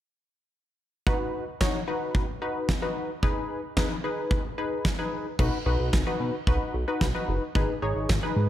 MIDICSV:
0, 0, Header, 1, 4, 480
1, 0, Start_track
1, 0, Tempo, 540541
1, 947, Time_signature, 4, 2, 24, 8
1, 7542, End_track
2, 0, Start_track
2, 0, Title_t, "Analog polysynth"
2, 0, Program_c, 0, 90
2, 947, Note_on_c, 0, 63, 81
2, 947, Note_on_c, 0, 66, 78
2, 947, Note_on_c, 0, 71, 91
2, 1282, Note_off_c, 0, 63, 0
2, 1282, Note_off_c, 0, 66, 0
2, 1282, Note_off_c, 0, 71, 0
2, 1427, Note_on_c, 0, 63, 82
2, 1427, Note_on_c, 0, 66, 73
2, 1427, Note_on_c, 0, 73, 91
2, 1594, Note_off_c, 0, 63, 0
2, 1594, Note_off_c, 0, 66, 0
2, 1594, Note_off_c, 0, 73, 0
2, 1666, Note_on_c, 0, 63, 82
2, 1666, Note_on_c, 0, 66, 76
2, 1666, Note_on_c, 0, 71, 89
2, 2001, Note_off_c, 0, 66, 0
2, 2001, Note_off_c, 0, 71, 0
2, 2002, Note_off_c, 0, 63, 0
2, 2146, Note_on_c, 0, 63, 84
2, 2146, Note_on_c, 0, 66, 73
2, 2146, Note_on_c, 0, 71, 91
2, 2398, Note_off_c, 0, 63, 0
2, 2398, Note_off_c, 0, 66, 0
2, 2398, Note_off_c, 0, 71, 0
2, 2506, Note_on_c, 0, 63, 85
2, 2506, Note_on_c, 0, 66, 77
2, 2506, Note_on_c, 0, 71, 93
2, 2758, Note_off_c, 0, 63, 0
2, 2758, Note_off_c, 0, 66, 0
2, 2758, Note_off_c, 0, 71, 0
2, 2866, Note_on_c, 0, 63, 84
2, 2867, Note_on_c, 0, 68, 80
2, 2867, Note_on_c, 0, 71, 93
2, 3202, Note_off_c, 0, 63, 0
2, 3202, Note_off_c, 0, 68, 0
2, 3202, Note_off_c, 0, 71, 0
2, 3347, Note_on_c, 0, 63, 84
2, 3347, Note_on_c, 0, 68, 76
2, 3348, Note_on_c, 0, 71, 91
2, 3514, Note_off_c, 0, 63, 0
2, 3514, Note_off_c, 0, 68, 0
2, 3515, Note_off_c, 0, 71, 0
2, 3587, Note_on_c, 0, 68, 77
2, 3588, Note_on_c, 0, 63, 85
2, 3588, Note_on_c, 0, 71, 93
2, 3922, Note_off_c, 0, 63, 0
2, 3922, Note_off_c, 0, 68, 0
2, 3922, Note_off_c, 0, 71, 0
2, 4067, Note_on_c, 0, 63, 82
2, 4067, Note_on_c, 0, 68, 76
2, 4067, Note_on_c, 0, 71, 93
2, 4318, Note_off_c, 0, 63, 0
2, 4318, Note_off_c, 0, 68, 0
2, 4318, Note_off_c, 0, 71, 0
2, 4427, Note_on_c, 0, 63, 84
2, 4427, Note_on_c, 0, 71, 93
2, 4428, Note_on_c, 0, 68, 78
2, 4678, Note_off_c, 0, 63, 0
2, 4678, Note_off_c, 0, 71, 0
2, 4679, Note_off_c, 0, 68, 0
2, 4787, Note_on_c, 0, 63, 83
2, 4787, Note_on_c, 0, 66, 78
2, 4787, Note_on_c, 0, 71, 92
2, 4954, Note_off_c, 0, 63, 0
2, 4954, Note_off_c, 0, 66, 0
2, 4954, Note_off_c, 0, 71, 0
2, 5026, Note_on_c, 0, 63, 82
2, 5026, Note_on_c, 0, 66, 78
2, 5027, Note_on_c, 0, 71, 92
2, 5278, Note_off_c, 0, 63, 0
2, 5278, Note_off_c, 0, 66, 0
2, 5278, Note_off_c, 0, 71, 0
2, 5387, Note_on_c, 0, 63, 83
2, 5387, Note_on_c, 0, 66, 77
2, 5387, Note_on_c, 0, 71, 92
2, 5638, Note_off_c, 0, 63, 0
2, 5638, Note_off_c, 0, 66, 0
2, 5638, Note_off_c, 0, 71, 0
2, 5747, Note_on_c, 0, 63, 84
2, 5747, Note_on_c, 0, 66, 79
2, 5747, Note_on_c, 0, 71, 96
2, 5998, Note_off_c, 0, 63, 0
2, 5998, Note_off_c, 0, 66, 0
2, 5998, Note_off_c, 0, 71, 0
2, 6107, Note_on_c, 0, 63, 86
2, 6107, Note_on_c, 0, 66, 78
2, 6107, Note_on_c, 0, 71, 94
2, 6274, Note_off_c, 0, 63, 0
2, 6274, Note_off_c, 0, 71, 0
2, 6275, Note_off_c, 0, 66, 0
2, 6346, Note_on_c, 0, 63, 85
2, 6346, Note_on_c, 0, 66, 79
2, 6346, Note_on_c, 0, 71, 94
2, 6597, Note_off_c, 0, 66, 0
2, 6598, Note_off_c, 0, 63, 0
2, 6598, Note_off_c, 0, 71, 0
2, 6705, Note_on_c, 0, 63, 86
2, 6705, Note_on_c, 0, 68, 81
2, 6705, Note_on_c, 0, 71, 95
2, 6873, Note_off_c, 0, 63, 0
2, 6874, Note_off_c, 0, 68, 0
2, 6874, Note_off_c, 0, 71, 0
2, 6947, Note_on_c, 0, 63, 83
2, 6947, Note_on_c, 0, 68, 77
2, 6947, Note_on_c, 0, 73, 91
2, 7198, Note_off_c, 0, 63, 0
2, 7198, Note_off_c, 0, 68, 0
2, 7198, Note_off_c, 0, 73, 0
2, 7307, Note_on_c, 0, 63, 85
2, 7307, Note_on_c, 0, 68, 78
2, 7307, Note_on_c, 0, 71, 92
2, 7542, Note_off_c, 0, 63, 0
2, 7542, Note_off_c, 0, 68, 0
2, 7542, Note_off_c, 0, 71, 0
2, 7542, End_track
3, 0, Start_track
3, 0, Title_t, "Analog synth bass"
3, 0, Program_c, 1, 38
3, 4787, Note_on_c, 1, 35, 108
3, 4885, Note_off_c, 1, 35, 0
3, 5026, Note_on_c, 1, 35, 100
3, 5125, Note_off_c, 1, 35, 0
3, 5147, Note_on_c, 1, 35, 90
3, 5245, Note_off_c, 1, 35, 0
3, 5268, Note_on_c, 1, 35, 96
3, 5366, Note_off_c, 1, 35, 0
3, 5506, Note_on_c, 1, 47, 96
3, 5605, Note_off_c, 1, 47, 0
3, 5746, Note_on_c, 1, 35, 95
3, 5845, Note_off_c, 1, 35, 0
3, 5987, Note_on_c, 1, 35, 96
3, 6085, Note_off_c, 1, 35, 0
3, 6226, Note_on_c, 1, 35, 101
3, 6325, Note_off_c, 1, 35, 0
3, 6467, Note_on_c, 1, 30, 95
3, 6565, Note_off_c, 1, 30, 0
3, 6706, Note_on_c, 1, 32, 105
3, 6805, Note_off_c, 1, 32, 0
3, 6946, Note_on_c, 1, 32, 91
3, 7045, Note_off_c, 1, 32, 0
3, 7067, Note_on_c, 1, 32, 90
3, 7165, Note_off_c, 1, 32, 0
3, 7189, Note_on_c, 1, 32, 98
3, 7286, Note_off_c, 1, 32, 0
3, 7427, Note_on_c, 1, 44, 98
3, 7526, Note_off_c, 1, 44, 0
3, 7542, End_track
4, 0, Start_track
4, 0, Title_t, "Drums"
4, 947, Note_on_c, 9, 36, 113
4, 1036, Note_off_c, 9, 36, 0
4, 1427, Note_on_c, 9, 38, 102
4, 1429, Note_on_c, 9, 36, 107
4, 1515, Note_off_c, 9, 38, 0
4, 1518, Note_off_c, 9, 36, 0
4, 1907, Note_on_c, 9, 36, 103
4, 1996, Note_off_c, 9, 36, 0
4, 2386, Note_on_c, 9, 36, 99
4, 2386, Note_on_c, 9, 38, 96
4, 2475, Note_off_c, 9, 36, 0
4, 2475, Note_off_c, 9, 38, 0
4, 2867, Note_on_c, 9, 36, 108
4, 2955, Note_off_c, 9, 36, 0
4, 3346, Note_on_c, 9, 38, 100
4, 3348, Note_on_c, 9, 36, 108
4, 3435, Note_off_c, 9, 38, 0
4, 3437, Note_off_c, 9, 36, 0
4, 3826, Note_on_c, 9, 36, 112
4, 3915, Note_off_c, 9, 36, 0
4, 4306, Note_on_c, 9, 36, 105
4, 4306, Note_on_c, 9, 38, 98
4, 4395, Note_off_c, 9, 36, 0
4, 4395, Note_off_c, 9, 38, 0
4, 4786, Note_on_c, 9, 36, 113
4, 4787, Note_on_c, 9, 49, 81
4, 4875, Note_off_c, 9, 36, 0
4, 4875, Note_off_c, 9, 49, 0
4, 5266, Note_on_c, 9, 38, 102
4, 5268, Note_on_c, 9, 36, 114
4, 5355, Note_off_c, 9, 38, 0
4, 5357, Note_off_c, 9, 36, 0
4, 5746, Note_on_c, 9, 36, 109
4, 5835, Note_off_c, 9, 36, 0
4, 6226, Note_on_c, 9, 36, 105
4, 6226, Note_on_c, 9, 38, 102
4, 6315, Note_off_c, 9, 36, 0
4, 6315, Note_off_c, 9, 38, 0
4, 6707, Note_on_c, 9, 36, 111
4, 6795, Note_off_c, 9, 36, 0
4, 7186, Note_on_c, 9, 38, 101
4, 7189, Note_on_c, 9, 36, 109
4, 7275, Note_off_c, 9, 38, 0
4, 7278, Note_off_c, 9, 36, 0
4, 7542, End_track
0, 0, End_of_file